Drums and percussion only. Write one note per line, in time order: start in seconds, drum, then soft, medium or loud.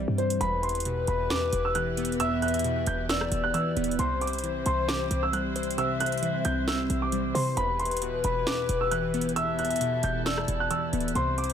0.18 closed hi-hat soft
0.30 closed hi-hat medium
0.41 closed hi-hat medium
0.63 closed hi-hat soft
0.69 closed hi-hat soft
0.75 closed hi-hat medium
0.80 closed hi-hat medium
0.85 closed hi-hat medium
1.07 closed hi-hat medium
1.30 snare loud
1.30 closed hi-hat medium
1.53 closed hi-hat medium
1.75 closed hi-hat medium
1.97 closed hi-hat medium
2.05 closed hi-hat medium
2.12 closed hi-hat medium
2.20 closed hi-hat medium
2.42 closed hi-hat soft
2.48 closed hi-hat medium
2.54 closed hi-hat medium
2.59 closed hi-hat medium
2.64 closed hi-hat medium
2.86 closed hi-hat medium
3.09 snare loud
3.09 closed hi-hat medium
3.21 cross-stick loud
3.32 closed hi-hat medium
3.54 closed hi-hat medium
3.77 closed hi-hat medium
3.84 closed hi-hat medium
3.91 closed hi-hat medium
3.99 closed hi-hat medium
4.21 closed hi-hat soft
4.27 closed hi-hat medium
4.33 closed hi-hat medium
4.38 closed hi-hat medium
4.44 closed hi-hat medium
4.66 closed hi-hat medium
4.89 snare loud
4.89 closed hi-hat medium
5.11 closed hi-hat medium
5.33 closed hi-hat medium
5.56 closed hi-hat medium
5.63 closed hi-hat medium
5.71 closed hi-hat medium
5.78 closed hi-hat medium
6.00 closed hi-hat medium
6.06 closed hi-hat medium
6.12 closed hi-hat medium
6.18 closed hi-hat soft
6.23 closed hi-hat medium
6.45 closed hi-hat medium
6.68 snare loud
6.68 closed hi-hat medium
6.90 closed hi-hat medium
7.12 closed hi-hat medium
7.35 open hi-hat medium
7.57 closed hi-hat medium
7.79 closed hi-hat soft
7.85 closed hi-hat medium
7.91 closed hi-hat medium
7.97 closed hi-hat medium
8.02 closed hi-hat medium
8.24 closed hi-hat medium
8.47 snare loud
8.47 closed hi-hat medium
8.69 closed hi-hat medium
8.91 closed hi-hat medium
9.14 closed hi-hat medium
9.21 closed hi-hat medium
9.29 closed hi-hat medium
9.36 closed hi-hat medium
9.59 closed hi-hat soft
9.65 closed hi-hat medium
9.71 closed hi-hat medium
9.76 closed hi-hat medium
9.81 closed hi-hat medium
10.03 closed hi-hat medium
10.26 snare loud
10.26 closed hi-hat medium
10.38 cross-stick loud
10.48 closed hi-hat medium
10.71 closed hi-hat medium
10.93 closed hi-hat medium
11.00 closed hi-hat medium
11.08 closed hi-hat medium
11.15 closed hi-hat medium
11.38 closed hi-hat soft
11.44 closed hi-hat medium
11.50 closed hi-hat medium